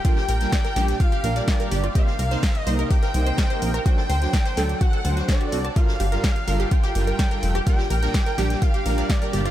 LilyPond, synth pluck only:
\new Staff \with { instrumentName = "Synth pluck" } { \time 4/4 \key bes \major \tempo 4 = 126 f'16 g'16 bes'16 r16 d''16 bes'16 g'16 r16 f'16 g'16 bes'16 d''16 r16 bes'16 g'16 f'16 | g'16 r16 bes'16 c''16 ees''16 r16 c''16 bes'16 g'16 bes'16 r16 c''16 ees''16 c''16 r16 bes'16 | fis'16 a'16 c''16 r16 d''16 c''16 a'16 r16 fis'16 a'16 a'16 fis'16 r16 fis'16 fis'16 a''16 | f'16 r16 g'16 bes'16 d''16 r16 bes'16 g'16 f'16 g'16 r16 bes'16 d''16 bes'16 r16 g'16 |
f'16 g'16 bes'16 bes'16 d''16 bes'16 g'16 r16 f'16 g'16 bes'16 d''16 r16 bes'16 g'16 f'16 | }